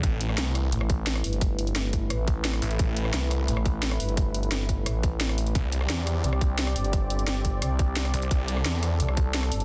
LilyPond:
<<
  \new Staff \with { instrumentName = "Analog synth pad" } { \time 4/4 \key a \minor \tempo 4 = 174 << { <a b'>1~ | <a b'>1~ | <a b'>1~ | <a b'>1 |
<c' d''>1~ | <c' d''>1~ | <c' d''>1 | } \\ { e'1~ | e'1~ | e'1~ | e'1 |
g'1~ | g'1 | a'1 | } >> }
  \new Staff \with { instrumentName = "Detuned saw bass" } { \clef bass \time 4/4 \key a \minor a,,8 a,,8 c,4 r2 | r2. r8 a,,8 | a,,8 a,,8 c,4 r2 | r1 |
c,8 c,8 e,4 r2 | r2. r8 c,8 | c,8 c,8 e,4 r2 | }
  \new Staff \with { instrumentName = "FM bass" } { \clef bass \time 4/4 \key a \minor r2 a,,4. g,,8~ | g,,2 a,,4. r8 | r2 a,,4. g,,8~ | g,,2 a,,2 |
r2 c,4. g,,8~ | g,,2 c,4. r8 | r2 c,4. g,,8 | }
  \new DrumStaff \with { instrumentName = "Drums" } \drummode { \time 4/4 <hh bd>8 hh16 ss16 <hh sn>8 <hh ss>8 hh16 ss16 <hh bd>8 <hh sn>16 <hh ss>16 hho16 hh16 | <hh bd>8 hh16 hh16 <hh sn>8 <hh bd>8 <hh ss>8 <hh bd>8 <hh sn>16 <hh ss>16 hho16 hh16 | <hh bd>8 hh16 ss16 <hh sn>8 <hh ss>8 hh16 ss16 <hh bd>8 <hh sn>16 <hh ss>16 hho16 hh16 | <hh bd>8 hh16 hh16 <hh sn>8 <hh bd>8 <hh ss>8 <hh bd>8 <hh sn>16 <hh ss>16 hho16 hh16 |
<hh bd>8 hh16 ss16 <hh sn>8 <hh ss>8 hh16 ss16 <hh bd>8 <hh sn>16 <hh ss>16 hho16 hh16 | <hh bd>8 hh16 hh16 <hh sn>8 <hh bd>8 <hh ss>8 <hh bd>8 <hh sn>16 <hh ss>16 hho16 hh16 | <hh bd>8 hh16 ss16 <hh sn>8 <hh ss>8 hh16 ss16 <hh bd>8 <hh sn>16 <hh ss>16 hho16 hh16 | }
>>